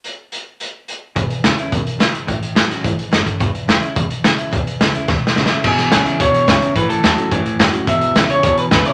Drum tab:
CC |------------------------|------------------------|------------------------|------------------------|
HH |x-----x-----x-----x-----|x--x--x--x--x--x--x--x--|x--x--x--x--x--x--x--x--|x--x--x--x--x--x--x--x--|
SD |------------------------|------o-----------o-----|------o--o--------o-----|------o-----------o-----|
BD |------------------------|o-----------o-----------|o-----------o--------o--|o-----------o-----------|

CC |------------------------|x-----------------------|------------------------|------------------------|
HH |x--x--x--x--------------|---x--x--x--x--x--x--x--|x--x--x--x--x--x--x--x--|x--x--x--x--x--x--x--x--|
SD |------o-----o---o-o-o---|---o--o-----------o-----|------o-----------o-----|------o-----------o-----|
BD |o-----------o-----------|o-----------o-----o-----|o-----------o-----o-----|o-----------o-----o-----|